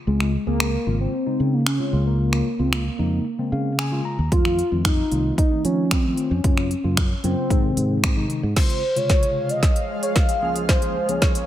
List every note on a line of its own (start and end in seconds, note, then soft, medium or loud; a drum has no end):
0.07 0.36 C#2 medium
0.07 0.31 C#3 medium
0.07 0.31 G#3 medium
0.07 0.44 G#3 medium
0.07 0.31 C4 medium
0.07 0.32 F4 medium
0.20 finger snap medium
0.46 0.75 C#2 medium
0.46 0.71 C#3 medium
0.46 0.71 G#3 medium
0.46 0.96 A#3 loud
0.46 0.71 C4 medium
0.46 0.71 G#4 medium
0.60 finger snap loud
0.86 1.06 G#1 medium
0.86 1.11 C#3 medium
0.86 1.11 G#3 medium
0.86 1.11 C4 medium
0.86 1.11 F4 medium
1.00 1.55 C4 loud
1.26 1.59 C#3 medium
1.26 1.59 G#3 medium
1.26 1.59 C4 medium
1.26 1.59 D#4 medium
1.40 1.78 C#3 medium
1.53 1.66 A#3 medium
1.67 2.04 C#4 loud
1.67 finger snap loud
1.79 1.91 C#3 medium
1.79 1.92 G#3 medium
1.79 1.93 C4 medium
1.79 1.92 F4 medium
1.93 2.41 C#2 medium
1.93 2.46 C#3 medium
1.93 2.46 G#3 medium
1.93 2.46 A#3 medium
1.93 2.46 F4 medium
2.06 2.19 A#3 medium
2.20 2.61 A#3 loud
2.33 finger snap medium
2.59 2.88 C#2 medium
2.59 2.83 C#3 medium
2.59 2.84 G#3 medium
2.59 2.84 A#3 medium
2.59 2.74 C4 loud
2.59 2.84 F4 medium
2.73 3.79 A#3 medium
2.73 finger snap loud
2.99 3.18 F2 medium
2.99 3.23 C#3 medium
2.99 3.23 G#3 medium
2.99 3.23 A#3 medium
2.99 3.24 D#4 medium
3.39 3.71 C#3 medium
3.39 3.71 G#3 medium
3.39 3.71 A#3 medium
3.39 3.72 C4 medium
3.52 4.00 C#3 medium
3.52 3.77 F5 medium
3.79 4.03 G#5 medium
3.79 finger snap loud
3.92 4.16 C#3 medium
3.92 4.16 G#3 medium
3.92 4.16 A#3 medium
3.92 4.17 F4 medium
4.05 4.30 A#5 medium
4.19 4.28 D#2 loud
4.31 4.60 F2 medium
4.31 4.56 D#3 medium
4.31 4.56 A3 medium
4.31 4.56 C4 medium
4.31 4.81 F4 loud
4.31 4.56 F4 medium
4.31 kick loud
4.31 closed hi-hat medium
4.45 finger snap medium
4.59 closed hi-hat medium
4.71 5.00 F2 medium
4.71 4.96 D#3 medium
4.71 4.96 A3 medium
4.71 4.96 C4 medium
4.71 4.96 F4 medium
4.85 5.34 D#4 loud
4.85 finger snap loud
4.85 kick loud
4.85 closed hi-hat medium
5.11 5.31 C2 medium
5.11 5.36 D#3 medium
5.11 5.36 A3 medium
5.11 5.36 C4 medium
5.11 5.36 F4 medium
5.11 closed hi-hat soft
5.38 5.63 D#4 loud
5.38 kick loud
5.38 closed hi-hat medium
5.51 5.84 D#3 medium
5.51 5.84 A3 medium
5.51 5.84 C4 medium
5.51 5.84 D#4 medium
5.65 6.12 F3 medium
5.65 5.93 C#4 medium
5.65 closed hi-hat medium
5.91 6.33 C4 medium
5.91 finger snap loud
5.91 kick loud
5.91 closed hi-hat medium
6.04 6.29 D#3 medium
6.04 6.29 A3 medium
6.04 6.29 C4 medium
6.04 6.29 F4 medium
6.17 closed hi-hat soft
6.31 6.41 F2 loud
6.31 6.97 C#4 medium
6.44 6.73 F#2 medium
6.44 6.69 C#3 medium
6.44 6.69 F#3 medium
6.44 6.69 A#3 medium
6.44 6.69 F4 medium
6.44 kick loud
6.44 closed hi-hat medium
6.58 finger snap medium
6.71 closed hi-hat medium
6.84 7.13 F#2 medium
6.84 7.08 C#3 medium
6.84 7.08 F#3 medium
6.84 7.08 A#3 medium
6.84 7.09 F4 medium
6.97 finger snap loud
6.97 kick loud
6.97 closed hi-hat medium
7.24 7.33 F#2 medium
7.24 7.48 C#3 medium
7.24 7.48 F#3 medium
7.24 7.48 A#3 medium
7.24 8.26 C4 loud
7.24 7.48 F4 medium
7.24 closed hi-hat soft
7.50 7.70 G#2 loud
7.50 7.61 C3 medium
7.50 7.61 D#3 medium
7.50 7.61 G#3 medium
7.50 7.61 D#4 medium
7.50 kick loud
7.50 closed hi-hat medium
7.63 7.96 C3 medium
7.63 7.96 D#3 medium
7.63 7.96 G#3 medium
7.63 7.96 C4 medium
7.77 8.25 G#2 medium
7.77 closed hi-hat medium
8.04 finger snap loud
8.04 kick loud
8.04 closed hi-hat medium
8.16 8.41 C3 medium
8.16 8.41 D#3 medium
8.16 8.41 G#3 medium
8.16 8.41 D#4 medium
8.30 closed hi-hat soft
8.43 8.53 G#2 loud
8.56 8.81 C#3 medium
8.56 10.41 F3 medium
8.56 8.81 G#3 medium
8.56 10.41 G#3 medium
8.56 8.81 C4 medium
8.56 8.81 F4 medium
8.56 8.98 C5 medium
8.56 10.41 F5 medium
8.56 kick loud
8.56 snare medium
8.56 closed hi-hat medium
8.56 crash medium
8.70 closed hi-hat soft
8.96 9.62 C3 medium
8.96 9.61 C#3 medium
8.96 9.61 G#3 medium
8.96 9.62 F4 medium
8.96 9.51 C#5 medium
8.96 closed hi-hat medium
9.10 kick loud
9.10 snare medium
9.10 closed hi-hat medium
9.23 closed hi-hat medium
9.49 10.02 D#5 loud
9.49 closed hi-hat soft
9.63 kick loud
9.63 snare medium
9.63 closed hi-hat medium
9.76 closed hi-hat medium
10.03 10.15 C#5 medium
10.03 closed hi-hat medium
10.16 10.53 F5 medium
10.16 kick loud
10.16 snare medium
10.16 closed hi-hat medium
10.29 closed hi-hat soft
10.42 10.95 C#2 medium
10.42 11.46 C#3 medium
10.42 10.95 F3 medium
10.42 10.96 A#3 medium
10.42 11.46 A#3 medium
10.42 10.96 C#4 medium
10.42 10.96 G#4 medium
10.42 11.46 G#4 medium
10.56 closed hi-hat medium
10.69 11.10 C5 medium
10.69 kick loud
10.69 snare medium
10.69 closed hi-hat medium
10.82 closed hi-hat soft
11.09 11.41 C#2 medium
11.09 11.41 F3 medium
11.09 11.41 A#3 medium
11.09 11.41 C#4 medium
11.09 11.42 G#4 medium
11.09 11.46 C#5 loud
11.09 closed hi-hat medium
11.22 kick loud
11.22 snare medium
11.22 closed hi-hat medium
11.35 closed hi-hat medium